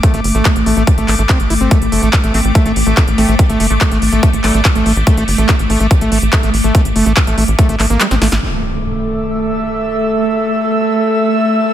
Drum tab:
HH |xxoxxxoxxxoxxxox|xxoxxxoxxxoxxxox|xxoxxxoxxxoxxxox|xxoxxxoxxxoxxxox|
CP |----x-----x-x---|----x-------x---|----x-----x-x---|----x-------x---|
SD |----------------|----------------|----------------|----------------|
BD |o---o---o---o---|o---o---o---o---|o---o---o---o---|o---o---o---o---|

HH |xxoxxxoxxxoxxxox|----------------|----------------|
CP |----x-----x-x---|----------------|----------------|
SD |-------------ooo|----------------|----------------|
BD |o---o---o-------|----------------|----------------|